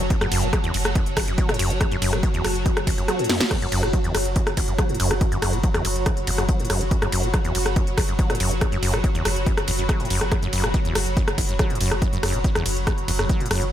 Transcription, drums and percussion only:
0.10 kick, closed hi-hat
0.21 cross-stick, closed hi-hat
0.32 open hi-hat, ride
0.43 closed hi-hat
0.53 kick, cross-stick, closed hi-hat
0.64 closed hi-hat
0.74 open hi-hat, ride
0.85 cross-stick, closed hi-hat
0.95 kick, closed hi-hat
1.06 closed hi-hat
1.17 kick, cross-stick, open hi-hat, ride
1.28 closed hi-hat
1.38 kick, closed hi-hat
1.49 cross-stick, closed hi-hat
1.54 closed hi-hat
1.59 open hi-hat, ride
1.70 closed hi-hat
1.81 kick, cross-stick, closed hi-hat
1.92 closed hi-hat
2.02 open hi-hat, ride
2.13 cross-stick, closed hi-hat
2.23 kick, closed hi-hat
2.34 closed hi-hat
2.44 cross-stick, open hi-hat, ride
2.55 closed hi-hat
2.66 kick, closed hi-hat
2.77 cross-stick, closed hi-hat
2.87 kick, open hi-hat, ride
2.98 closed hi-hat
3.08 cross-stick, closed hi-hat
3.19 closed hi-hat
3.24 closed hi-hat
3.29 snare, open hi-hat, ride
3.40 snare, closed hi-hat
3.51 kick, cross-stick, closed hi-hat, crash
3.62 closed hi-hat
3.72 open hi-hat, ride
3.83 cross-stick, closed hi-hat
3.93 kick, closed hi-hat
4.04 closed hi-hat
4.15 cross-stick, open hi-hat, ride
4.25 closed hi-hat
4.36 kick, closed hi-hat
4.47 cross-stick, closed hi-hat
4.57 kick, open hi-hat, ride
4.68 closed hi-hat
4.78 kick, cross-stick, closed hi-hat
4.89 closed hi-hat
4.95 closed hi-hat
5.00 open hi-hat, ride
5.11 cross-stick, closed hi-hat
5.21 kick, closed hi-hat
5.32 closed hi-hat
5.42 cross-stick, open hi-hat, ride
5.53 closed hi-hat
5.63 kick, closed hi-hat
5.74 cross-stick, closed hi-hat
5.85 open hi-hat, ride
5.96 closed hi-hat
6.06 kick, cross-stick, closed hi-hat
6.17 closed hi-hat
6.27 open hi-hat, ride
6.38 cross-stick, closed hi-hat
6.49 kick, closed hi-hat
6.60 closed hi-hat
6.65 closed hi-hat
6.70 cross-stick, open hi-hat, ride
6.81 closed hi-hat
6.91 kick, closed hi-hat
7.02 cross-stick, closed hi-hat
7.12 open hi-hat, ride
7.23 closed hi-hat
7.34 kick, cross-stick, closed hi-hat
7.45 closed hi-hat
7.55 open hi-hat, ride
7.66 cross-stick, closed hi-hat
7.76 kick, closed hi-hat
7.87 closed hi-hat
7.98 kick, cross-stick, open hi-hat, ride
8.08 closed hi-hat
8.19 kick, closed hi-hat
8.30 cross-stick, closed hi-hat
8.35 closed hi-hat
8.40 open hi-hat, ride
8.51 closed hi-hat
8.61 kick, cross-stick, closed hi-hat
8.72 closed hi-hat
8.83 open hi-hat, ride
8.94 cross-stick, closed hi-hat
9.04 kick, closed hi-hat
9.15 closed hi-hat
9.25 cross-stick, open hi-hat, ride
9.36 closed hi-hat
9.46 kick, closed hi-hat
9.57 cross-stick, closed hi-hat
9.68 open hi-hat, ride
9.79 closed hi-hat
9.89 kick, cross-stick, closed hi-hat
10.00 closed hi-hat
10.05 closed hi-hat
10.10 open hi-hat, ride
10.21 cross-stick, closed hi-hat
10.32 kick, cross-stick, closed hi-hat
10.43 closed hi-hat
10.53 open hi-hat, ride
10.64 cross-stick
10.74 kick, closed hi-hat
10.85 closed hi-hat
10.95 cross-stick, open hi-hat, ride
11.06 closed hi-hat
11.17 kick, closed hi-hat
11.28 cross-stick, closed hi-hat
11.38 kick, open hi-hat, ride
11.49 closed hi-hat
11.59 kick, cross-stick, closed hi-hat
11.70 closed hi-hat
11.75 closed hi-hat
11.81 open hi-hat, ride
11.91 cross-stick, closed hi-hat
12.02 kick, closed hi-hat
12.13 closed hi-hat
12.23 cross-stick, open hi-hat, ride
12.34 closed hi-hat
12.44 kick, closed hi-hat
12.55 cross-stick, closed hi-hat
12.66 open hi-hat, ride
12.77 closed hi-hat
12.87 kick, cross-stick, closed hi-hat
12.98 closed hi-hat
13.08 open hi-hat, ride
13.19 cross-stick, closed hi-hat
13.29 kick, closed hi-hat
13.40 closed hi-hat
13.46 closed hi-hat
13.51 cross-stick, open hi-hat, ride
13.62 closed hi-hat

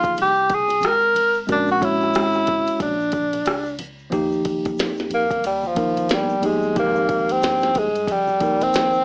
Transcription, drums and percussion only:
0.02 kick, ride, shaker
0.16 ride, shaker
0.35 shaker
0.49 kick, ride, high conga, shaker
0.68 ride, high conga, shaker
0.81 cross-stick, hi-hat pedal, ride, low conga, shaker
1.00 shaker
1.15 ride, low conga, shaker
1.34 shaker
1.48 kick, ride, shaker
1.67 shaker
1.81 kick, ride, shaker
2.01 cross-stick, shaker
2.13 cross-stick, hi-hat pedal, ride, shaker
2.33 cross-stick, shaker
2.46 kick, ride, high conga, low conga, shaker
2.66 ride, shaker
2.80 kick, ride, shaker
3.00 shaker
3.12 kick, ride, high conga, shaker
3.33 ride, high conga, shaker
3.45 cross-stick, hi-hat pedal, ride, low conga, shaker
3.66 shaker
3.79 ride, low conga, shaker
3.99 shaker
4.12 kick, ride, shaker
4.32 shaker
4.45 kick, ride, shaker
4.65 kick, ride, shaker
4.77 snare, hi-hat pedal, ride, shaker
4.97 snare, shaker
5.10 ride, low conga, shaker
5.30 kick, ride, shaker
5.44 ride, shaker
5.63 high conga, shaker
5.76 kick, ride, shaker
5.97 ride, high conga, shaker
6.09 snare, hi-hat pedal, ride, shaker
6.29 shaker
6.42 ride, high conga, low conga, shaker
6.62 shaker
6.76 kick, ride, shaker
6.96 shaker
7.09 kick, ride, shaker
7.29 ride, shaker
7.41 snare, hi-hat pedal, ride, shaker
7.62 snare, shaker
7.74 kick, ride, low conga, shaker
7.95 ride, shaker
8.08 kick, ride, shaker
8.27 high conga, shaker
8.41 kick, ride, shaker
8.61 ride, high conga, shaker
8.73 snare, hi-hat pedal, ride, shaker
8.93 shaker

